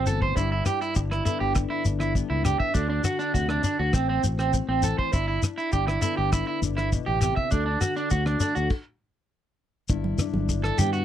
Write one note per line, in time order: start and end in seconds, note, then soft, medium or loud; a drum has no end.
0.00 0.37 A2 medium
0.00 0.34 C4 medium
0.00 0.34 F#4 medium
0.06 0.34 G1 medium
0.06 0.33 E3 medium
0.06 0.33 B3 medium
0.06 0.19 A4 medium
0.06 closed hi-hat soft
0.06 shekere medium
0.22 0.34 C5 medium
0.22 kick medium
0.35 0.61 G1 medium
0.35 2.13 G2 medium
0.35 0.94 D4 medium
0.35 0.49 E4 medium
0.35 kick medium
0.35 shekere medium
0.52 0.64 E4 medium
0.66 1.54 E4 medium
0.66 0.79 G4 medium
0.66 cross-stick medium
0.66 closed hi-hat soft
0.66 shekere medium
0.82 0.94 E4 medium
0.82 shekere soft
0.95 1.20 G1 medium
0.95 1.84 D4 medium
0.95 muted clean electric guitar stroke medium
0.95 kick medium
0.95 shekere medium
1.11 1.23 E4 medium
1.11 cross-stick medium
1.25 2.73 D3 medium
1.25 2.14 B3 soft
1.25 1.38 E4 medium
1.25 closed hi-hat soft
1.25 shekere medium
1.40 1.65 G1 medium
1.40 1.53 G4 medium
1.55 2.74 E4 medium
1.55 muted clean electric guitar stroke medium
1.55 kick medium
1.55 cross-stick medium
1.55 shekere medium
1.70 1.82 E4 medium
1.85 2.22 G1 medium
1.85 2.44 D4 medium
1.85 closed hi-hat soft
1.85 shekere medium
2.00 2.13 E4 medium
2.00 cross-stick medium
2.00 shekere soft
2.14 2.71 G2 medium
2.14 2.71 B3 medium
2.14 kick medium
2.14 shekere medium
2.30 2.54 C#2 medium
2.30 2.42 E4 medium
2.45 2.72 D4 medium
2.45 2.57 G4 medium
2.45 cross-stick medium
2.45 closed hi-hat soft
2.45 shekere medium
2.60 2.72 E5 medium
2.60 kick medium
2.74 2.99 D2 medium
2.74 3.94 D3 medium
2.74 2.87 D4 medium
2.74 3.02 F#4 medium
2.74 kick medium
2.74 shekere medium
2.90 3.02 D4 medium
3.04 3.90 F#4 medium
3.04 3.17 F#4 medium
3.04 cross-stick medium
3.04 closed hi-hat soft
3.04 shekere medium
3.19 3.31 D4 medium
3.19 shekere soft
3.33 3.59 D2 medium
3.33 3.64 C3 medium
3.33 3.46 F#4 medium
3.33 kick medium
3.33 shekere medium
3.49 3.61 D4 medium
3.49 cross-stick medium
3.63 3.76 D4 medium
3.63 closed hi-hat soft
3.63 shekere medium
3.79 3.91 D2 medium
3.79 3.91 F#4 medium
3.93 4.18 A1 medium
3.93 5.13 A2 medium
3.93 4.52 C4 medium
3.93 4.06 C4 medium
3.93 kick medium
3.93 cross-stick medium
3.93 shekere medium
4.09 4.21 C4 medium
4.23 4.60 A1 medium
4.23 5.10 F#4 medium
4.23 closed hi-hat soft
4.23 shekere medium
4.39 4.51 C4 medium
4.39 cross-stick medium
4.39 shekere soft
4.53 5.10 C4 medium
4.53 kick medium
4.53 shekere medium
4.68 4.92 A1 medium
4.68 4.81 C4 medium
4.83 5.10 E3 medium
4.83 4.96 A4 medium
4.83 muted steel-string acoustic guitar stroke medium
4.83 closed hi-hat soft
4.83 shekere medium
4.98 5.10 C5 medium
4.98 kick medium
5.13 5.37 G1 medium
5.13 5.73 D4 medium
5.13 5.25 E4 medium
5.13 muted steel-string acoustic guitar stroke medium
5.13 kick medium
5.13 shekere medium
5.28 5.40 E4 medium
5.43 6.32 E4 medium
5.43 cross-stick medium
5.43 closed hi-hat soft
5.43 shekere medium
5.58 5.70 E4 medium
5.58 shekere soft
5.72 5.97 G1 medium
5.72 6.63 D4 medium
5.72 5.85 G4 medium
5.72 kick medium
5.72 shekere medium
5.87 6.00 E4 medium
5.87 cross-stick medium
6.02 7.50 D3 medium
6.02 7.48 B3 medium
6.02 6.14 E4 medium
6.02 closed hi-hat soft
6.02 shekere medium
6.17 6.42 G1 medium
6.17 6.29 G4 medium
6.33 6.45 E4 medium
6.33 7.52 E4 medium
6.33 kick medium
6.33 cross-stick medium
6.33 shekere medium
6.47 6.59 E4 medium
6.62 6.98 G1 medium
6.62 7.49 D4 medium
6.62 closed hi-hat soft
6.62 shekere medium
6.77 6.89 E4 medium
6.77 cross-stick medium
6.77 shekere soft
6.92 7.21 B2 medium
6.92 kick medium
6.92 shekere medium
7.06 7.31 A1 medium
7.06 7.19 G4 medium
7.21 7.51 C3 medium
7.21 7.33 G4 medium
7.21 cross-stick medium
7.21 closed hi-hat soft
7.21 shekere medium
7.36 7.49 E5 medium
7.36 kick medium
7.51 7.76 D2 medium
7.51 8.71 D3 medium
7.51 7.63 D4 medium
7.51 7.82 F#4 medium
7.51 kick medium
7.51 shekere medium
7.66 7.78 D4 medium
7.81 7.93 F#4 medium
7.81 8.11 F#4 medium
7.81 cross-stick medium
7.81 closed hi-hat soft
7.81 shekere medium
7.96 8.08 D4 medium
7.96 shekere soft
8.10 8.35 D2 medium
8.10 8.23 F#4 medium
8.10 8.67 F#4 medium
8.10 kick medium
8.10 shekere medium
8.26 8.38 D4 medium
8.26 cross-stick medium
8.40 8.67 A3 medium
8.40 8.53 D4 medium
8.40 8.67 D4 medium
8.40 closed hi-hat medium
8.40 shekere medium
8.55 8.68 D2 medium
8.55 8.67 F#4 medium
8.55 shekere soft
8.70 kick medium
8.70 crash medium
9.89 10.13 G1 loud
9.89 11.05 G2 medium
9.89 11.05 E4 medium
9.89 kick medium
9.89 shekere medium
10.04 high conga medium
10.18 11.05 D4 medium
10.18 cross-stick medium
10.18 closed hi-hat soft
10.18 low conga medium
10.18 shekere medium
10.34 10.70 G1 medium
10.34 high conga medium
10.49 muted steel-string acoustic guitar stroke medium
10.49 kick medium
10.49 shekere medium
10.64 10.78 A4 medium
10.64 cross-stick medium
10.78 11.03 G2 medium
10.78 11.05 B3 medium
10.78 10.92 G4 medium
10.78 closed hi-hat soft
10.78 low conga medium
10.78 shekere medium
10.93 11.05 F#4 medium
10.93 shekere soft